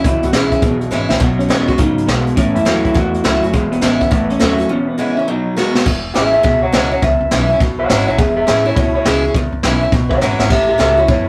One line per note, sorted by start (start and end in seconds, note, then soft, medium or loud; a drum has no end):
0.04 0.19 C#2 medium
0.04 0.32 E2 medium
0.04 0.61 E2 medium
0.04 0.32 B2 medium
0.04 0.24 E4 loud
0.04 kick loud
0.04 closed hi-hat medium
0.23 0.31 C#2 medium
0.23 0.33 F#4 loud
0.23 closed hi-hat medium
0.33 0.56 B1 medium
0.33 0.60 E2 medium
0.33 0.60 C#3 loud
0.33 0.51 E3 medium
0.33 0.52 G#3 medium
0.33 0.52 C#4 medium
0.33 0.51 E4 medium
0.33 0.78 G#4 loud
0.33 snare loud
0.33 closed hi-hat medium
0.52 0.63 C#4 soft
0.52 0.62 E4 medium
0.52 kick medium
0.52 closed hi-hat medium
0.62 0.85 B1 medium
0.62 0.89 E2 medium
0.62 0.90 B2 medium
0.62 1.19 B2 medium
0.62 kick loud
0.62 closed hi-hat medium
0.81 closed hi-hat medium
0.91 1.06 G#1 medium
0.91 1.18 E2 medium
0.91 1.19 C#3 medium
0.91 1.09 E3 medium
0.91 1.10 G#3 medium
0.91 1.10 C#4 medium
0.91 1.08 E4 loud
0.91 snare medium
1.09 1.18 B1 medium
1.09 1.21 C#4 medium
1.09 1.20 E4 medium
1.09 snare medium
1.20 1.44 B1 medium
1.20 1.77 B2 loud
1.20 1.48 B2 medium
1.20 1.48 F#3 medium
1.20 1.25 B3 medium
1.20 kick loud
1.20 closed hi-hat medium
1.39 1.67 C#4 loud
1.39 closed hi-hat medium
1.48 1.73 E2 loud
1.48 1.77 B2 medium
1.48 1.67 D#3 medium
1.48 1.68 G#3 medium
1.48 1.77 G#3 medium
1.48 1.68 B3 medium
1.48 1.66 F#4 medium
1.48 snare loud
1.48 closed hi-hat medium
1.68 1.80 B3 soft
1.68 1.73 C#4 medium
1.68 1.78 F#4 medium
1.68 kick medium
1.68 closed hi-hat medium
1.78 2.02 G#2 medium
1.78 2.06 B2 medium
1.78 2.07 C#3 medium
1.78 2.06 F#3 medium
1.78 2.09 D#4 loud
1.78 kick loud
1.78 closed hi-hat medium
1.98 closed hi-hat medium
2.07 2.31 B1 medium
2.07 2.35 B2 medium
2.07 2.36 B2 medium
2.07 2.35 G#3 medium
2.07 2.25 B3 medium
2.07 snare loud
2.07 closed hi-hat medium
2.27 closed hi-hat medium
2.35 2.52 A1 medium
2.35 2.63 A2 medium
2.35 2.93 A2 medium
2.35 2.64 E3 medium
2.35 2.57 C#4 loud
2.35 kick loud
2.35 closed hi-hat medium
2.55 2.64 F#2 medium
2.55 2.84 E4 loud
2.55 closed hi-hat medium
2.65 2.89 E2 loud
2.65 2.93 A2 medium
2.65 2.94 E3 medium
2.65 2.93 F#3 medium
2.65 2.94 A3 medium
2.65 2.94 C#4 medium
2.65 2.95 F#4 medium
2.65 snare loud
2.65 closed hi-hat medium
2.85 2.96 E4 loud
2.85 kick medium
2.85 closed hi-hat medium
2.94 3.51 E2 medium
2.94 3.18 E2 medium
2.94 3.22 A2 medium
2.94 3.22 E3 medium
2.94 3.25 F#4 loud
2.94 kick loud
2.94 closed hi-hat medium
3.14 closed hi-hat medium
3.24 3.39 C#2 medium
3.24 3.51 A2 medium
3.24 3.42 E3 medium
3.24 3.52 F#3 medium
3.24 3.42 A3 medium
3.24 3.43 C#4 medium
3.24 3.43 E4 loud
3.24 3.41 F#4 loud
3.24 snare loud
3.24 closed hi-hat medium
3.42 3.54 F#1 medium
3.42 3.54 C#4 soft
3.42 3.53 F#4 medium
3.42 closed hi-hat medium
3.53 3.77 E1 medium
3.53 3.80 E2 medium
3.53 4.10 E2 medium
3.53 3.81 B2 loud
3.53 3.72 G#3 loud
3.53 kick loud
3.53 closed hi-hat medium
3.72 4.00 B3 loud
3.72 closed hi-hat medium
3.81 4.05 A1 loud
3.81 4.09 E2 medium
3.81 4.10 C#3 medium
3.81 4.00 E3 medium
3.81 4.00 G#3 medium
3.81 4.01 C#4 medium
3.81 3.99 E4 medium
3.81 snare loud
3.81 closed hi-hat medium
4.01 4.31 B3 medium
4.01 4.12 C#4 soft
4.01 4.11 E4 medium
4.01 kick medium
4.01 closed hi-hat medium
4.11 4.35 A1 loud
4.11 4.38 A2 medium
4.11 4.67 A2 medium
4.11 4.38 E3 medium
4.11 kick loud
4.11 closed hi-hat medium
4.30 4.69 C#4 medium
4.30 closed hi-hat medium
4.40 4.64 D#2 medium
4.40 4.67 A2 medium
4.40 4.58 E3 loud
4.40 4.68 F#3 medium
4.40 4.58 A3 medium
4.40 4.59 C#4 loud
4.40 4.57 F#4 loud
4.40 snare loud
4.40 closed hi-hat medium
4.58 4.70 C#4 soft
4.58 4.69 F#4 medium
4.58 closed hi-hat medium
4.69 5.26 E2 medium
4.69 4.97 E2 medium
4.69 4.97 B2 medium
4.69 4.88 C#4 medium
4.88 4.97 B3 medium
4.98 5.26 E2 medium
4.98 5.26 C#3 medium
4.98 5.16 E3 medium
4.98 5.17 G#3 medium
4.98 5.17 B3 medium
4.98 5.17 C#4 medium
4.98 5.15 E4 medium
5.17 5.27 C#4 medium
5.17 5.28 C#4 medium
5.17 5.27 E4 medium
5.27 5.84 B2 medium
5.27 5.55 B2 medium
5.27 5.55 F#3 loud
5.27 5.75 D#4 medium
5.57 5.84 B2 medium
5.57 5.75 D#3 medium
5.57 5.84 G#3 medium
5.57 5.75 G#3 medium
5.57 5.75 B3 loud
5.57 5.74 F#4 loud
5.57 snare medium
5.75 5.87 B3 medium
5.75 5.85 F#4 medium
5.75 snare medium
5.86 6.09 E1 medium
5.86 6.42 E2 loud
5.86 kick loud
5.86 crash loud
6.14 6.38 A1 loud
6.14 6.33 E3 medium
6.14 6.33 G#3 medium
6.14 6.33 C#4 medium
6.14 6.32 E4 medium
6.14 6.30 G#4 medium
6.14 6.31 E5 medium
6.14 snare loud
6.14 open hi-hat medium
6.32 6.44 E4 medium
6.32 6.42 G#4 medium
6.32 6.43 E5 loud
6.36 6.45 C#4 soft
6.43 6.67 C#2 loud
6.43 7.00 B2 medium
6.43 6.61 G#4 medium
6.43 6.62 E5 medium
6.43 kick loud
6.43 open hi-hat soft
6.63 6.72 C#5 medium
6.63 6.73 F#5 medium
6.72 6.96 C#2 medium
6.72 6.91 E3 loud
6.72 6.91 G#3 loud
6.72 6.91 C#4 loud
6.72 6.90 E4 loud
6.72 6.91 C#5 medium
6.72 6.91 F#5 medium
6.72 snare loud
6.72 open hi-hat medium
6.91 7.03 C#4 medium
6.91 7.02 E4 medium
6.91 7.02 C#5 medium
6.91 7.02 F#5 medium
7.02 7.17 C#2 loud
7.02 7.58 E2 loud
7.02 7.59 E5 loud
7.02 kick loud
7.02 open hi-hat medium
7.21 7.29 C#2 loud
7.31 7.54 B1 loud
7.31 7.49 E3 medium
7.31 7.50 G#3 medium
7.31 7.50 C#4 medium
7.31 7.49 E4 medium
7.31 snare loud
7.31 open hi-hat medium
7.50 7.61 C#4 medium
7.50 7.60 E4 medium
7.60 7.83 B1 medium
7.60 8.17 B2 medium
7.60 kick loud
7.60 open hi-hat medium
7.79 7.87 C#5 medium
7.79 7.88 F#5 medium
7.88 8.04 G#1 medium
7.88 8.08 E3 medium
7.88 8.08 G#3 loud
7.88 8.08 C#4 loud
7.88 8.06 E4 loud
7.88 8.06 C#5 medium
7.88 8.07 F#5 loud
7.88 snare loud
7.88 open hi-hat medium
8.07 8.16 B1 medium
8.07 8.19 C#4 medium
8.07 8.18 E4 medium
8.07 8.17 C#5 medium
8.07 8.19 F#5 medium
8.18 8.41 E1 medium
8.18 8.74 E2 loud
8.18 8.35 G#4 medium
8.18 8.35 E5 medium
8.18 kick loud
8.18 open hi-hat medium
8.36 8.45 G#4 medium
8.36 8.46 E5 loud
8.47 8.71 A1 loud
8.47 8.65 E3 medium
8.47 8.65 G#3 medium
8.47 8.66 C#4 medium
8.47 8.64 E4 medium
8.47 8.64 G#4 medium
8.47 8.65 E5 medium
8.47 snare loud
8.47 open hi-hat medium
8.65 8.77 C#4 soft
8.65 8.74 E4 medium
8.65 8.76 E4 medium
8.65 8.75 C#5 medium
8.75 8.99 C#2 loud
8.75 9.33 B2 loud
8.75 8.93 E4 medium
8.75 8.94 C#5 medium
8.75 kick loud
8.75 open hi-hat medium
8.95 9.05 E4 medium
8.95 9.05 C#5 medium
9.05 9.28 C#2 loud
9.05 9.23 E3 medium
9.05 9.24 G#3 medium
9.05 9.24 C#4 loud
9.05 9.24 E4 loud
9.05 9.34 G#4 loud
9.05 snare loud
9.25 9.36 C#4 soft
9.25 9.35 E4 medium
9.34 9.49 C#2 loud
9.34 9.91 E2 loud
9.34 kick loud
9.34 open hi-hat soft
9.53 9.61 C#2 medium
9.63 9.86 B1 loud
9.63 9.82 E3 medium
9.63 9.82 G#3 medium
9.63 9.83 C#4 medium
9.63 9.81 E4 medium
9.63 snare loud
9.63 open hi-hat medium
9.82 9.93 C#4 soft
9.82 9.92 E4 medium
9.92 10.15 B1 medium
9.92 10.49 B2 medium
9.92 kick loud
9.92 open hi-hat medium
10.09 10.20 C#5 loud
10.09 10.20 F#5 loud
10.09 kick medium
10.20 10.36 G#1 medium
10.20 10.40 E3 loud
10.20 10.40 G#3 medium
10.20 10.40 C#4 loud
10.20 10.38 E4 loud
10.20 10.39 C#5 medium
10.20 10.40 F#5 medium
10.20 snare medium
10.39 10.48 G#1 medium
10.39 10.51 C#4 soft
10.39 10.50 E4 medium
10.39 10.50 C#5 medium
10.39 10.51 F#5 medium
10.39 snare loud
10.50 10.73 A1 medium
10.50 11.07 A2 medium
10.50 10.68 G4 medium
10.50 10.69 E5 loud
10.50 kick loud
10.50 open hi-hat medium
10.50 crash medium
10.69 10.79 G4 medium
10.69 10.80 E5 medium
10.78 11.02 C#2 loud
10.78 10.97 E3 medium
10.78 10.97 A3 medium
10.78 10.98 C#4 medium
10.78 10.96 F#4 medium
10.78 10.97 G4 medium
10.78 10.99 E5 loud
10.78 snare loud
10.78 open hi-hat medium
10.97 11.09 C#4 medium
10.97 11.08 E4 medium
10.97 11.08 F#4 medium
10.97 11.08 C#5 medium
11.08 11.29 E2 medium
11.08 11.29 F#2 loud
11.08 11.26 E4 medium
11.08 11.27 C#5 medium
11.08 kick loud
11.08 open hi-hat medium